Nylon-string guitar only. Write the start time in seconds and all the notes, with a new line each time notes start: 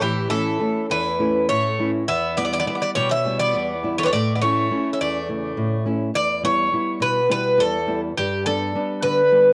0.01 A2
0.29 A3 C#4 E4
0.60 A3 C#4 E4
0.90 E2
1.19 A3 C#4 E4
1.50 A2
1.79 A3 C#4 E4
2.08 E2
2.37 G3 B3 E4
2.66 G3 B3 E4
2.96 B2
3.25 G3 B3 E4
3.54 E2
3.83 G3 B3 E4
4.13 A2
4.42 A3 C#4 E4
4.71 A3 C#4 E4
5.00 E2
5.29 C#3 A3 E4
5.57 A2
5.85 A3 C#4 E4
6.14 E2
6.43 G3 B3 E4
6.72 G3 B3 E4
7.00 B2
7.29 G3 B3 E4
7.58 E2
7.87 G3 B3 E4
8.18 G2
8.46 G3 B3 D4
8.75 G3 B3 D4
9.04 D3
9.32 G3 B3 D4